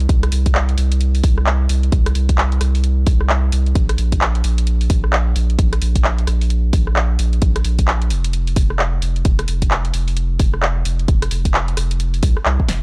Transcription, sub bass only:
0, 0, Header, 1, 2, 480
1, 0, Start_track
1, 0, Tempo, 458015
1, 95, Time_signature, 4, 2, 24, 8
1, 13444, End_track
2, 0, Start_track
2, 0, Title_t, "Sub bass"
2, 0, Program_c, 0, 38
2, 96, Note_on_c, 0, 36, 99
2, 314, Note_off_c, 0, 36, 0
2, 336, Note_on_c, 0, 36, 83
2, 799, Note_off_c, 0, 36, 0
2, 816, Note_on_c, 0, 36, 87
2, 1279, Note_off_c, 0, 36, 0
2, 1295, Note_on_c, 0, 36, 91
2, 1758, Note_off_c, 0, 36, 0
2, 1775, Note_on_c, 0, 36, 88
2, 1994, Note_off_c, 0, 36, 0
2, 2016, Note_on_c, 0, 36, 98
2, 2234, Note_off_c, 0, 36, 0
2, 2256, Note_on_c, 0, 36, 84
2, 2718, Note_off_c, 0, 36, 0
2, 2736, Note_on_c, 0, 36, 88
2, 3198, Note_off_c, 0, 36, 0
2, 3214, Note_on_c, 0, 36, 90
2, 3677, Note_off_c, 0, 36, 0
2, 3695, Note_on_c, 0, 36, 89
2, 3914, Note_off_c, 0, 36, 0
2, 3934, Note_on_c, 0, 34, 98
2, 4153, Note_off_c, 0, 34, 0
2, 4175, Note_on_c, 0, 34, 80
2, 4638, Note_off_c, 0, 34, 0
2, 4656, Note_on_c, 0, 34, 88
2, 5119, Note_off_c, 0, 34, 0
2, 5134, Note_on_c, 0, 34, 92
2, 5597, Note_off_c, 0, 34, 0
2, 5615, Note_on_c, 0, 34, 91
2, 5834, Note_off_c, 0, 34, 0
2, 5854, Note_on_c, 0, 34, 101
2, 6073, Note_off_c, 0, 34, 0
2, 6097, Note_on_c, 0, 34, 84
2, 6559, Note_off_c, 0, 34, 0
2, 6576, Note_on_c, 0, 34, 87
2, 7039, Note_off_c, 0, 34, 0
2, 7055, Note_on_c, 0, 34, 91
2, 7518, Note_off_c, 0, 34, 0
2, 7536, Note_on_c, 0, 34, 92
2, 7754, Note_off_c, 0, 34, 0
2, 7775, Note_on_c, 0, 34, 102
2, 7994, Note_off_c, 0, 34, 0
2, 8015, Note_on_c, 0, 34, 79
2, 8495, Note_on_c, 0, 29, 87
2, 8511, Note_off_c, 0, 34, 0
2, 8958, Note_off_c, 0, 29, 0
2, 8975, Note_on_c, 0, 29, 92
2, 9438, Note_off_c, 0, 29, 0
2, 9455, Note_on_c, 0, 29, 92
2, 9674, Note_off_c, 0, 29, 0
2, 9695, Note_on_c, 0, 29, 103
2, 9914, Note_off_c, 0, 29, 0
2, 9936, Note_on_c, 0, 29, 81
2, 10398, Note_off_c, 0, 29, 0
2, 10416, Note_on_c, 0, 29, 88
2, 10878, Note_off_c, 0, 29, 0
2, 10895, Note_on_c, 0, 29, 95
2, 11358, Note_off_c, 0, 29, 0
2, 11376, Note_on_c, 0, 29, 93
2, 11594, Note_off_c, 0, 29, 0
2, 11615, Note_on_c, 0, 29, 100
2, 11833, Note_off_c, 0, 29, 0
2, 11857, Note_on_c, 0, 29, 80
2, 12319, Note_off_c, 0, 29, 0
2, 12337, Note_on_c, 0, 29, 87
2, 12799, Note_off_c, 0, 29, 0
2, 12815, Note_on_c, 0, 36, 86
2, 12945, Note_off_c, 0, 36, 0
2, 13056, Note_on_c, 0, 36, 102
2, 13185, Note_off_c, 0, 36, 0
2, 13297, Note_on_c, 0, 29, 82
2, 13444, Note_off_c, 0, 29, 0
2, 13444, End_track
0, 0, End_of_file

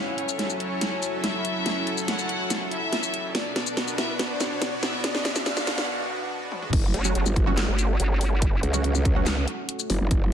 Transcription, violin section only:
0, 0, Header, 1, 2, 480
1, 0, Start_track
1, 0, Tempo, 422535
1, 1885, Time_signature, 4, 2, 24, 8
1, 11735, End_track
2, 0, Start_track
2, 0, Title_t, "Violin section"
2, 0, Program_c, 0, 48
2, 0, Note_on_c, 0, 61, 76
2, 0, Note_on_c, 0, 73, 99
2, 590, Note_off_c, 0, 61, 0
2, 590, Note_off_c, 0, 73, 0
2, 685, Note_on_c, 0, 61, 76
2, 685, Note_on_c, 0, 73, 94
2, 1310, Note_off_c, 0, 61, 0
2, 1310, Note_off_c, 0, 73, 0
2, 1406, Note_on_c, 0, 64, 76
2, 1406, Note_on_c, 0, 76, 98
2, 2270, Note_off_c, 0, 76, 0
2, 2271, Note_off_c, 0, 64, 0
2, 2364, Note_on_c, 0, 66, 76
2, 2364, Note_on_c, 0, 78, 94
2, 2990, Note_off_c, 0, 66, 0
2, 2990, Note_off_c, 0, 78, 0
2, 3085, Note_on_c, 0, 64, 74
2, 3085, Note_on_c, 0, 76, 96
2, 3710, Note_off_c, 0, 64, 0
2, 3710, Note_off_c, 0, 76, 0
2, 3805, Note_on_c, 0, 62, 71
2, 3805, Note_on_c, 0, 74, 95
2, 4430, Note_off_c, 0, 62, 0
2, 4430, Note_off_c, 0, 74, 0
2, 4525, Note_on_c, 0, 64, 72
2, 4525, Note_on_c, 0, 76, 89
2, 4746, Note_off_c, 0, 64, 0
2, 4746, Note_off_c, 0, 76, 0
2, 4763, Note_on_c, 0, 62, 78
2, 4764, Note_on_c, 0, 74, 96
2, 5389, Note_off_c, 0, 62, 0
2, 5390, Note_off_c, 0, 74, 0
2, 5484, Note_on_c, 0, 64, 75
2, 5485, Note_on_c, 0, 76, 91
2, 5706, Note_off_c, 0, 64, 0
2, 5706, Note_off_c, 0, 76, 0
2, 5726, Note_on_c, 0, 62, 75
2, 5726, Note_on_c, 0, 74, 102
2, 6186, Note_off_c, 0, 62, 0
2, 6186, Note_off_c, 0, 74, 0
2, 6206, Note_on_c, 0, 62, 81
2, 6206, Note_on_c, 0, 74, 103
2, 6666, Note_off_c, 0, 62, 0
2, 6666, Note_off_c, 0, 74, 0
2, 11735, End_track
0, 0, End_of_file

